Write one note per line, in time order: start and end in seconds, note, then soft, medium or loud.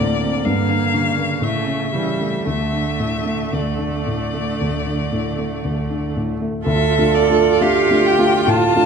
0.00 0.47 D2 soft
0.00 0.47 A2 soft
0.00 0.45 D3 soft
0.00 1.41 A#3 soft
0.00 0.23 C4 soft
0.00 0.47 D4 soft
0.00 0.46 D5 medium
0.23 0.46 C4 soft
0.45 1.39 G2 soft
0.45 0.95 D3 soft
0.45 1.44 F5 medium
0.70 1.08 D4 soft
0.94 2.44 C#3 soft
0.94 1.32 D3 soft
1.18 1.42 A#3 soft
1.41 2.43 A2 soft
1.41 1.92 A3 soft
1.41 2.46 E5 medium
1.67 2.09 C#4 soft
1.93 2.36 E3 soft
1.93 2.47 G3 soft
2.20 2.46 A3 soft
2.45 3.51 D2 soft
2.45 6.39 D3 soft
2.45 6.44 A3 soft
2.45 3.55 E5 medium
2.72 3.16 D4 soft
3.00 3.43 A2 soft
3.25 3.69 A3 soft
3.53 4.60 D2 soft
3.53 6.14 D5 soft
3.79 4.22 D4 soft
4.07 4.49 A2 soft
4.34 4.75 A3 soft
4.61 5.63 D2 soft
4.86 5.27 D4 soft
5.12 5.53 A2 soft
5.38 5.79 A3 soft
5.64 6.64 D2 soft
5.90 6.32 D4 soft
6.16 6.57 A2 soft
6.41 6.66 A3 soft
6.65 6.97 D2 medium
6.65 8.86 F4 medium
6.65 7.63 A4 medium
6.65 7.16 E5 medium
6.99 7.27 A3 soft
6.99 7.27 D4 soft
6.99 7.27 F4 soft
7.14 7.64 D5 medium
7.30 7.58 A3 soft
7.30 7.58 D4 soft
7.30 7.58 F4 soft
7.61 7.88 A3 medium
7.61 7.88 D4 soft
7.61 7.88 F4 medium
7.61 8.50 G4 medium
7.61 8.08 F5 medium
7.91 8.17 A3 soft
7.91 8.17 D4 soft
7.91 8.17 F4 soft
8.06 8.51 G5 medium
8.19 8.45 A3 soft
8.19 8.45 D4 soft
8.19 8.46 F4 medium
8.47 8.76 A2 medium
8.47 8.86 F4 medium
8.47 8.86 A5 medium
8.76 8.86 A3 soft
8.76 8.86 D4 soft
8.76 8.86 F4 medium